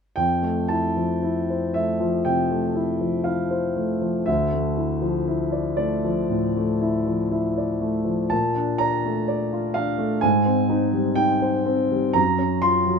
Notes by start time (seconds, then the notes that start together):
0.16 F2 G5
0.42 A3
0.68 E4 A5
0.97 F3
1.23 E4
1.50 C5
1.74 A3 E5
2.00 F3
2.25 C3 G5
2.51 A3
2.75 E4
3.01 F3
3.24 E4 F5
3.51 C5
3.76 A3
4.01 F3
4.26 D2 E5
4.53 A3
4.77 E4
5.02 F3
5.27 E4
5.52 D5
5.77 A3 D5
6.05 F3
6.30 A2
6.57 A3
6.81 E4
7.06 F3
7.31 E4
7.58 D5
7.81 A3
8.05 F3
8.30 A#2 A5
8.55 D4
8.78 D5 A#5
9.05 A3
9.28 D5
9.53 F4
9.74 D4 F5
9.98 A3
10.21 G#2 G#5
10.45 C4
10.69 D#4
10.93 G3
11.15 D#4 G5
11.42 C5
11.65 C4
11.91 G3
12.13 F#2 A#5
12.39 C#4
12.62 F4 C6
12.87 F#3